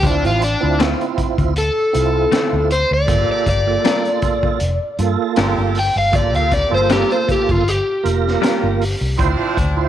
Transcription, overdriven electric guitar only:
0.06 0.25 D4 medium
0.27 0.42 F4 medium
0.44 0.80 D4 medium
1.58 2.68 A4 loud
2.72 2.91 C5 medium
2.94 3.29 D5 loud
3.32 3.47 D5 medium
3.49 4.96 D5 loud
5.79 5.97 G5 loud
5.98 6.15 F5 loud
6.15 6.34 D5 medium
6.36 6.54 F5 medium
6.54 6.72 D5 medium
6.74 6.90 C5 medium
6.92 7.11 G4 medium
7.12 7.28 C5 medium
7.32 7.51 G4 medium
7.51 7.69 F4 medium
7.69 9.16 G4 loud

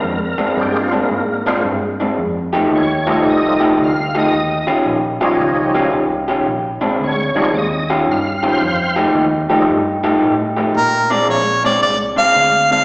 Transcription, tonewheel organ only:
0.00 0.20 A#4 loud
0.25 0.40 A#4 medium
0.43 0.58 A#4 medium
0.57 0.89 G#3 medium
0.57 0.89 A#3 medium
0.57 0.89 C4 medium
0.57 0.90 D4 medium
0.63 0.77 G4 medium
0.79 0.95 F4 medium
0.97 1.45 A#3 loud
1.46 1.62 G#3 medium
1.46 1.62 A#3 medium
1.46 1.63 C4 medium
1.46 1.63 F4 medium
2.75 3.08 C#5 loud
3.06 3.75 F3 medium
3.06 3.75 G3 medium
3.06 3.75 A3 medium
3.06 3.75 D#4 loud
3.12 3.27 C#5 loud
3.25 3.29 D5 medium
3.29 3.62 D#5 medium
3.84 4.16 F5 medium
4.18 4.68 D#5 loud
5.22 5.90 F3 loud
5.22 5.90 G3 medium
5.22 5.90 C#4 medium
5.22 5.90 D#4 loud
7.04 7.37 C#5 loud
7.35 7.52 F3 medium
7.35 7.52 G3 medium
7.35 7.52 C#4 medium
7.35 7.52 D#4 medium
7.39 7.55 C#5 loud
7.54 7.57 D5 medium
7.58 7.91 D#5 medium
8.11 8.44 F5 medium
8.48 8.95 C5 loud
8.48 8.98 F5 loud
9.50 9.66 F3 medium
9.50 9.66 G3 medium
9.50 9.67 A3 medium
9.50 9.67 D#4 medium

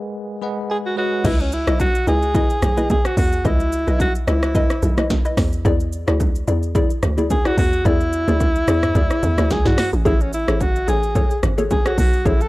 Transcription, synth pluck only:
1.24 1.39 E4 medium
1.24 1.39 B4 medium
1.24 1.39 D#5 loud
1.67 1.79 E4 medium
1.67 1.79 B4 medium
1.67 1.79 D#5 medium
2.07 2.22 E4 medium
2.07 2.22 B4 medium
2.07 2.22 D#5 medium
2.35 2.49 E4 medium
2.35 2.49 B4 medium
2.35 2.49 D#5 loud
2.77 2.89 E4 medium
2.77 2.89 B4 medium
2.77 2.89 D#5 medium
3.45 3.59 E4 medium
3.45 3.59 B4 medium
3.45 3.60 D#5 loud
3.87 3.99 E4 medium
3.87 3.99 B4 medium
3.87 4.00 D#5 medium
4.27 4.42 E4 medium
4.27 4.42 B4 medium
4.27 4.42 D#5 medium
4.55 4.69 E4 loud
4.55 4.69 B4 medium
4.55 4.70 D#5 loud
4.97 5.09 E4 medium
4.97 5.10 B4 medium
4.97 5.10 D#5 medium
5.25 5.37 E4 medium
5.25 5.37 B4 medium
5.25 5.37 D#5 medium
5.65 5.79 E4 medium
5.65 5.80 G#4 medium
5.65 5.80 D5 loud
6.08 6.19 E4 medium
6.08 6.20 G#4 medium
6.08 6.20 D5 medium
6.47 6.62 E4 medium
6.47 6.62 G#4 medium
6.47 6.62 D5 medium
6.75 6.90 E4 medium
6.75 6.90 G#4 medium
6.75 6.90 D5 loud
7.18 7.30 E4 medium
7.18 7.30 G#4 medium
7.18 7.30 D5 medium
7.45 7.57 E4 medium
7.45 7.57 G#4 medium
7.45 7.57 D5 medium
7.85 8.00 E4 loud
7.85 8.00 G#4 medium
7.85 8.00 D5 loud
8.28 8.40 E4 medium
8.28 8.40 G#4 medium
8.28 8.40 D5 medium
8.68 8.82 E4 medium
8.68 8.82 G#4 medium
8.68 8.82 D5 medium
8.95 9.10 E4 medium
8.95 9.10 G#4 medium
8.95 9.10 D5 loud
9.38 9.50 E4 medium
9.38 9.50 G#4 medium
9.38 9.50 D5 medium
9.65 9.77 E4 medium
9.65 9.77 G#4 medium
9.65 9.78 D5 medium
10.05 10.20 G#4 medium
10.05 10.20 A4 medium
10.05 10.20 C#5 loud
10.48 10.60 G#4 medium
10.48 10.60 A4 medium
10.48 10.60 C#5 medium
10.88 11.02 G#4 medium
10.88 11.02 A4 medium
10.88 11.03 C#5 medium
11.15 11.30 G#4 loud
11.15 11.30 A4 medium
11.15 11.30 C#5 loud
11.58 11.70 G#4 medium
11.58 11.70 A4 medium
11.58 11.70 C#5 medium
11.85 11.97 G#4 medium
11.85 11.98 A4 medium
11.85 11.98 C#5 medium
12.25 12.40 G#4 medium
12.25 12.40 A4 medium
12.25 12.40 C#5 loud

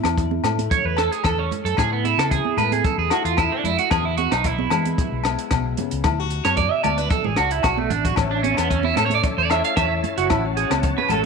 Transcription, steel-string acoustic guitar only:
0.00 0.13 A2 medium
0.00 1.78 E4 medium
0.17 0.66 E3 medium
0.44 1.75 A3 medium
0.71 1.19 E2 medium
1.24 1.73 E3 medium
1.77 3.11 E4 medium
1.77 muted steel-string acoustic guitar stroke medium
2.31 2.79 E3 medium
2.58 3.88 A3 medium
2.85 3.33 E2 medium
3.12 6.03 E4 medium
3.38 3.86 E3 medium
3.91 5.25 B3 medium
3.91 muted steel-string acoustic guitar stroke medium
4.45 4.93 E3 medium
4.72 6.02 G#3 medium
4.99 5.47 B2 medium
5.26 6.05 B3 medium
5.52 5.78 B2 medium
5.78 6.05 C#3 medium
6.05 6.53 D3 medium
6.05 6.20 E4 medium
6.20 8.18 F#4 medium
6.57 7.06 A3 medium
6.85 6.98 B3 medium
6.98 7.37 D4 soft
7.11 muted steel-string acoustic guitar stroke medium
7.38 8.15 D4 medium
7.64 8.12 A3 medium
8.17 8.65 A2 medium
8.17 10.27 C#4 medium
8.71 9.19 E3 medium
8.97 10.27 A3 medium
9.23 9.72 E2 medium
9.50 11.25 E4 medium
9.75 10.24 E3 medium
10.29 10.78 A2 medium
10.29 11.25 C#4 medium
10.84 11.25 E3 medium
11.11 11.25 A3 medium

